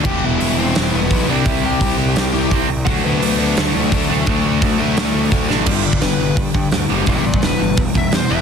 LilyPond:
<<
  \new Staff \with { instrumentName = "Lead electric guitar" } { \time 4/4 \key g \major \tempo 4 = 171 <g' g''>8 <e' e''>8 <e' e''>8 <c' c''>4 <b b'>4 <d' d''>8 | <e' e''>8 <g' g''>2. r8 | <fis' fis''>8 <b b'>8 <b b'>4 <a a'>2~ | <a a'>2. r4 |
<g' e''>8 <f' d''>8 b'4 r2 | <g' e''>8 <f' d''>8 b'4 r8 e''8 c''8 e''8 | }
  \new Staff \with { instrumentName = "Distorted electric guitar" } { \clef bass \time 4/4 \key g \major <e g b e'>4. <e g b e'>4. <e g b e'>8 <c g c' e'>8~ | <c g c' e'>4 <c g c' e'>4. <c g c' e'>4 r8 | <d fis a d'>4. <d fis a d'>4. <d fis a d'>4 | <d fis a d'>4. <d fis a d'>4. <d fis a d'>4 |
<g, d g>8 <g, d>8 <g, d>8 <g, d>8 <g, d>8 <g, d>8 <g, d>8 <g, d g>8 | <e g b>8 <e g>8 <e g>8 <e g>8 <e g>8 <e g>8 <e g>8 <e g b>8 | }
  \new Staff \with { instrumentName = "Distorted electric guitar" } { \clef bass \time 4/4 \key g \major <e, b, e>2.~ <e, b, e>8 <c g c'>8~ | <c g c'>2. <c g c'>8 r8 | <d a d'>2.~ <d a d'>8 <d a d'>8 | <d a d'>2.~ <d a d'>8 <d a d'>8 |
<g, d g>8 <g, d>8 <g, d>8 <g, d>8 <g, d>8 <g, d>8 <g, d>8 <g, d g>8 | <e, b, e>8 <e, b,>8 <e, b,>8 <e, b,>8 <e, b,>8 <e, b,>8 <e, b,>8 <e, b, e>8 | }
  \new Staff \with { instrumentName = "Picked electric bass" } { \clef bass \time 4/4 \key g \major e,,8 e,,8 e,,4 e,,8 e,,8 b,,8 c,8 | c,8 c,8 c,8 c,8 c,8 c,8 c,8 c,8 | d,8 d,8 d,4 d,8 d,8 d,8 d,8 | d,8 d,8 d,8 d,8 d,8 d,8 d,8 a,,8 |
g,,4 g,,8 g,,8 g,8 g,8 d,8 fis,,8 | e,,8 a,,8 e,,8 g,,8 e,,8 e,,8 e,8 e,,8 | }
  \new DrumStaff \with { instrumentName = "Drums" } \drummode { \time 4/4 <cymc bd>4 hho4 <hho sn>4 <hho bd>4 | <hho bd>4 <hho bd>4 <hho sn>4 <hho bd>4 | <hho bd>4 hho4 <hho sn>4 <hho bd>4 | <hho bd>4 <hho bd>4 <hho sn>4 <hho bd>8 sn8 |
<cymc bd>8. bd16 <hho sn>4 <hho bd>8 bd8 <hho sn>4 | <hho bd>8. bd16 <hho sn>4 <hho bd>8 bd8 <hho sn>4 | }
>>